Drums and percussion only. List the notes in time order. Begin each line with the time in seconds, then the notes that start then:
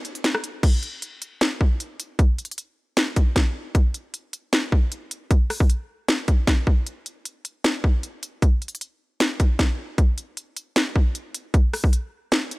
0.05 closed hi-hat
0.15 closed hi-hat
0.24 snare, closed hi-hat
0.35 cross-stick
0.44 closed hi-hat
0.63 kick, closed hi-hat, crash
0.83 closed hi-hat
1.02 closed hi-hat
1.22 closed hi-hat
1.41 snare, closed hi-hat
1.61 kick
1.80 closed hi-hat
2.00 closed hi-hat
2.19 kick, closed hi-hat
2.38 closed hi-hat
2.45 closed hi-hat
2.51 closed hi-hat
2.58 closed hi-hat
2.97 snare, closed hi-hat
3.16 kick, closed hi-hat
3.36 kick, snare, closed hi-hat
3.75 kick, closed hi-hat
3.94 closed hi-hat
4.14 closed hi-hat
4.33 closed hi-hat
4.53 snare, closed hi-hat
4.72 kick
4.92 closed hi-hat
5.11 closed hi-hat
5.31 kick, closed hi-hat
5.50 cross-stick, open hi-hat
5.60 kick
5.70 closed hi-hat
6.08 snare, closed hi-hat
6.28 kick, closed hi-hat
6.47 kick, snare, closed hi-hat
6.67 kick
6.87 closed hi-hat
7.06 closed hi-hat
7.25 closed hi-hat
7.45 closed hi-hat
7.64 snare, closed hi-hat
7.84 kick
8.03 closed hi-hat
8.23 closed hi-hat
8.42 kick, closed hi-hat
8.62 closed hi-hat
8.68 closed hi-hat
8.75 closed hi-hat
8.81 closed hi-hat
9.20 snare, closed hi-hat
9.40 kick, closed hi-hat
9.59 kick, snare, closed hi-hat
9.98 kick, closed hi-hat
10.18 closed hi-hat
10.37 closed hi-hat
10.57 closed hi-hat
10.76 snare, closed hi-hat
10.96 kick
11.15 closed hi-hat
11.35 closed hi-hat
11.54 kick, closed hi-hat
11.73 cross-stick, open hi-hat
11.84 kick
11.93 closed hi-hat
12.32 snare, closed hi-hat
12.51 closed hi-hat